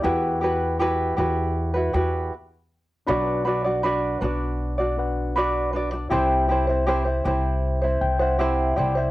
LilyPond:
<<
  \new Staff \with { instrumentName = "Reed electric piano" } { \time 4/4 \key b \phrygian \tempo 4 = 79 << { r1 | r1 | r2 r8 g''16 fis''16 e''8 d''8 | } \\ { <e' g' b' fis''>2. r4 | <d' fis' b' fis''>2~ <d' fis' b' fis''>8 <d' fis' b' fis''>4. | <e' g' c'' g''>1 | } >> }
  \new Staff \with { instrumentName = "Ukulele" } { \time 4/4 \key b \phrygian <e' fis' g' b'>8 <e' fis' g' b'>8 <e' fis' g' b'>8 <e' fis' g' b'>8. <e' fis' b'>16 <e' fis' g' b'>8 r4 | <d' fis' b' d''>8 <d' fis' b' d''>16 <d' fis' d''>16 <d' fis' b' d''>8 <d' fis' b' d''>8. <d' fis' d''>8. <d' fis' b' d''>8 <d' fis' b' d''>16 <d' fis' d''>16 | <c' e' g' c''>8 <c' e' g' c''>16 <c' e' c''>16 <c' e' g' c''>16 <c' e' c''>16 <c' e' g' c''>8. <c' e' c''>8 <c' e' c''>16 <c' e' g' c''>8 <c' e' g' c''>16 <c' e' c''>16 | }
  \new Staff \with { instrumentName = "Upright bass" } { \clef bass \time 4/4 \key b \phrygian e,4. e,4 e,8 r4 | b,,4. b,,2~ b,,8 | c,4. c,4 c,4 c,8 | }
>>